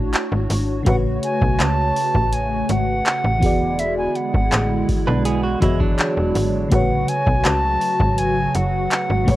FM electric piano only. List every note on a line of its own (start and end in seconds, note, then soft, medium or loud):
0.00 0.45 A3 medium
0.00 0.44 D4 medium
0.00 0.46 E4 medium
0.00 0.47 F#4 medium
0.00 0.47 C#5 medium
0.83 3.37 C#3 medium
0.83 3.38 A3 medium
0.83 3.38 F#4 medium
0.88 3.39 B4 medium
0.88 3.40 C#5 medium
3.39 5.56 E3 medium
3.39 5.57 B3 medium
3.39 5.58 F#4 medium
3.44 5.59 G#4 medium
3.44 5.60 D5 medium
5.60 6.71 E3 medium
5.60 6.71 B3 medium
5.60 6.70 F#4 medium
5.60 6.72 G#4 medium
5.60 6.72 C#5 medium
6.68 9.22 C#3 medium
6.68 9.23 A3 medium
6.68 9.24 F#4 medium
6.73 9.25 B4 medium
6.73 9.25 C#5 medium
9.24 9.36 C#3 medium
9.24 9.36 G#3 medium
9.24 9.36 A3 medium
9.29 9.36 B4 medium
9.29 9.36 C#5 medium